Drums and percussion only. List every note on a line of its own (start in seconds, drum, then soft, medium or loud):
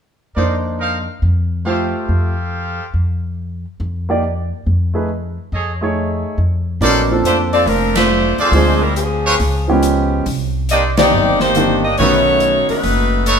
6.82 open hi-hat soft
7.25 closed hi-hat soft
7.53 open hi-hat soft
7.67 open hi-hat soft
7.95 snare medium
7.95 ride medium
8.38 open hi-hat soft
8.53 open hi-hat soft
8.96 closed hi-hat medium
9.40 open hi-hat soft
9.83 closed hi-hat medium
10.26 open hi-hat soft
10.69 closed hi-hat medium
10.97 snare medium
10.97 ride medium
11.40 snare soft
11.55 closed hi-hat soft
11.98 open hi-hat soft
12.40 closed hi-hat medium
12.69 open hi-hat soft
12.83 open hi-hat soft
13.26 closed hi-hat medium